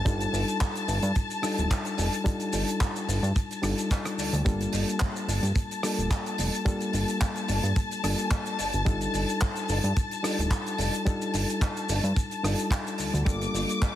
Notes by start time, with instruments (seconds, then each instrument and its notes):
Already playing: string section A5
0.05 analog synth bass G1, reed electric piano G3 D4 D#4 F4 A4, kick, closed hi-hat, shaker
0.20 closed hi-hat, shaker
0.33 analog synth bass G1, open hi-hat, shaker
0.48 closed hi-hat, shaker
0.60 kick, clap, closed hi-hat, shaker
0.75 closed hi-hat, shaker
0.88 analog synth bass G1, open hi-hat, shaker
1.03 analog synth bass G2, closed hi-hat, shaker
1.15 kick, closed hi-hat, shaker
1.30 closed hi-hat, shaker
1.42 reed electric piano G3 D4 D#4 F4 A4, cross-stick, open hi-hat, shaker
1.58 analog synth bass D1, closed hi-hat, shaker
1.71 kick, clap, closed hi-hat, shaker
1.85 closed hi-hat, shaker
1.98 analog synth bass F1, open hi-hat, shaker
2.13 closed hi-hat, shaker
2.24 reed electric piano G3 D4 D#4 F4 A4, kick, closed hi-hat, shaker
2.40 closed hi-hat, shaker
2.53 analog synth bass G1, open hi-hat, shaker
2.68 closed hi-hat, shaker
2.81 kick, clap, closed hi-hat, shaker
2.96 closed hi-hat, shaker
3.08 analog synth bass G1, open hi-hat, shaker
3.23 analog synth bass G2, closed hi-hat, shaker
3.36 kick, closed hi-hat, shaker
3.51 closed hi-hat, shaker
3.62 analog synth bass G1, reed electric piano G3 D4 D#4 F4 A4, cross-stick, open hi-hat, shaker
3.78 closed hi-hat, shaker
3.91 kick, clap, closed hi-hat, shaker
4.05 cross-stick, closed hi-hat, shaker
4.18 analog synth bass D2, open hi-hat, shaker
4.33 analog synth bass D2, closed hi-hat, shaker
4.45 analog synth bass G1, reed electric piano G3 A#3 D4 F4 A4, string section A5, kick, closed hi-hat, shaker
4.61 closed hi-hat, shaker
4.73 analog synth bass G1, open hi-hat, shaker
4.88 closed hi-hat, shaker
5.00 kick, clap, closed hi-hat, shaker
5.16 closed hi-hat, shaker
5.28 analog synth bass G1, open hi-hat, shaker
5.43 analog synth bass G2, closed hi-hat, shaker
5.56 kick, closed hi-hat, shaker
5.71 closed hi-hat, shaker
5.83 reed electric piano G3 A#3 D4 F4 A4, cross-stick, open hi-hat, shaker
5.98 analog synth bass D1, closed hi-hat, shaker
6.11 kick, clap, closed hi-hat, shaker
6.26 closed hi-hat, shaker
6.38 analog synth bass F1, open hi-hat, shaker
6.54 closed hi-hat, shaker
6.65 reed electric piano G3 A#3 D4 F4 A4, kick, closed hi-hat, shaker
6.81 closed hi-hat, shaker
6.93 analog synth bass G1, open hi-hat, shaker
7.08 closed hi-hat, shaker
7.21 kick, clap, closed hi-hat, shaker
7.36 closed hi-hat, shaker
7.48 analog synth bass G1, open hi-hat, shaker
7.63 analog synth bass G2, closed hi-hat, shaker
7.76 kick, closed hi-hat, shaker
7.91 closed hi-hat, shaker
8.03 analog synth bass G1, reed electric piano G3 A#3 D4 F4 A4, cross-stick, open hi-hat, shaker
8.18 closed hi-hat, shaker
8.31 kick, clap, closed hi-hat, shaker
8.46 closed hi-hat, shaker
8.59 analog synth bass G1, open hi-hat, shaker
8.73 analog synth bass G1, closed hi-hat, shaker
8.85 analog synth bass G1, reed electric piano G3 D4 D#4 F4 A4, kick, closed hi-hat, shaker
9.01 closed hi-hat, shaker
9.14 analog synth bass G1, open hi-hat, shaker
9.29 closed hi-hat, shaker
9.40 kick, clap, closed hi-hat, shaker
9.56 closed hi-hat, shaker
9.69 analog synth bass G1, open hi-hat, shaker
9.84 analog synth bass G2, closed hi-hat, shaker
9.96 kick, closed hi-hat, shaker
10.11 closed hi-hat, shaker
10.23 reed electric piano G3 D4 D#4 F4 A4, cross-stick, open hi-hat, shaker
10.38 analog synth bass D1, closed hi-hat, shaker
10.51 kick, clap, closed hi-hat, shaker
10.67 closed hi-hat, shaker
10.78 analog synth bass F1, open hi-hat, shaker
10.94 closed hi-hat, shaker
11.06 reed electric piano G3 D4 D#4 F4 A4, kick, closed hi-hat, shaker
11.22 closed hi-hat, shaker
11.34 analog synth bass G1, open hi-hat, shaker
11.49 closed hi-hat, shaker
11.61 kick, clap, closed hi-hat, shaker
11.77 closed hi-hat, shaker
11.89 analog synth bass G1, open hi-hat, shaker
12.04 analog synth bass G2, closed hi-hat, shaker
12.16 kick, closed hi-hat, shaker
12.31 closed hi-hat, shaker
12.43 analog synth bass G1, reed electric piano G3 D4 D#4 F4 A4, cross-stick, open hi-hat, shaker
12.59 closed hi-hat, shaker
12.71 kick, clap, closed hi-hat, shaker
12.87 closed hi-hat, shaker
12.98 analog synth bass D2, open hi-hat, shaker
13.13 analog synth bass D2, closed hi-hat, shaker
13.25 analog synth bass G1, reed electric piano G3 A#3 D4 F4 A4, string section D6, kick, closed hi-hat, shaker
13.41 closed hi-hat, shaker
13.54 analog synth bass G1, open hi-hat, shaker
13.69 closed hi-hat, shaker
13.82 kick, clap, closed hi-hat, shaker